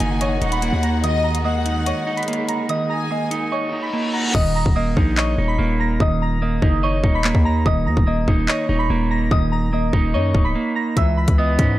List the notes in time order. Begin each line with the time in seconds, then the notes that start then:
Already playing: D#3 A#3 F#4 D#5 G#5 D#6
0.00 F#1 D#4, closed hi-hat
0.21 C#5 D#5 C#6, closed hi-hat
0.42 D#1 D#4 F#5, closed hi-hat
0.52 B5 B6, closed hi-hat
0.62 A#3, closed hi-hat
0.73 D#2
0.83 A#5 A#6, closed hi-hat
1.03 D#3 G#3 D#5 D#6, closed hi-hat
1.24 A#5 A#6
1.35 closed hi-hat
1.45 A#3 D#5 F#5 D#6
1.66 D#4, closed hi-hat
1.86 C#5 D#5 C#6, closed hi-hat
2.07 D#4
2.17 B5 B6, closed hi-hat
2.23 closed hi-hat
2.28 A#3, closed hi-hat
2.33 closed hi-hat
2.48 A#5 A#6, closed hi-hat
2.69 D#3 D#5 D#6, closed hi-hat
2.90 G#5 A#5 A#6
3.11 A#3 D#5 D#6
3.31 D#4, closed hi-hat
3.52 C#5 D#5 C#6, reverse cymbal
3.73 D#4
3.82 B5 B6
3.93 A#3
4.13 F#5 A#5 A#6
4.34 D#1 D#3 D#5 D#6, kick, crash
4.56 A#5 A#6
4.66 D#1, kick
4.76 A#3 D#5 D#6
4.97 A#1 D#4, kick
5.17 C#5 D#5 C#6, clap
5.38 D#1 D#4
5.48 B5 B6
5.59 D#1 A#3
5.80 A#5 A#6
6.00 D#1 D#3 D#5 D#6, kick
6.22 A#5 A#6
6.42 A#3 D#5 D#6
6.62 F#1 D#4, kick
6.83 C#5 D#5 C#6
7.04 D#1 D#4, kick
7.15 B5 B6
7.24 A#3, clap
7.35 D#2, kick
7.45 A#5 A#6
7.65 D#1 D#3 D#5 D#6, kick
7.86 D#2 A#5 A#6
7.97 D#1, kick
8.07 A#3 D#5 D#6
8.28 D#1 D#4, kick
8.48 C#5 D#5 C#6, clap
8.69 D#1 D#4
8.79 B5 B6
8.90 D#1 A#3
9.10 A#5 A#6
9.31 D#1 D#3 D#5 D#6, kick
9.52 A#5 A#6
9.73 A#3 D#5 D#6
9.93 D#1 D#4, kick
10.14 F#2 C#5 D#5 C#6
10.35 C#1 D#4, kick
10.44 B5 B6
10.55 A#3
10.75 A#5 A#6
10.97 C#2 E3 E5 E6, kick, closed hi-hat
11.17 B5 B6
11.28 C#2, kick, closed hi-hat
11.38 B3 D#5 D#6
11.59 G#2 C#4, kick, closed hi-hat